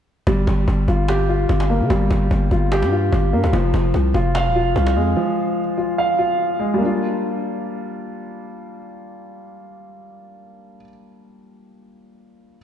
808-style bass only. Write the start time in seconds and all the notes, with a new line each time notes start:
0.27 G1
0.47 G1
0.68 G1
0.88 G1
1.49 G1
1.81 D3
1.90 G1
2.11 G1
2.31 G1
2.51 G1
2.83 G2
3.13 G1
3.33 G2
3.44 D2
3.53 F1
3.74 F1
3.94 C2
4.14 F1
4.46 D#1
4.61 F1
4.76 C2
4.96 F2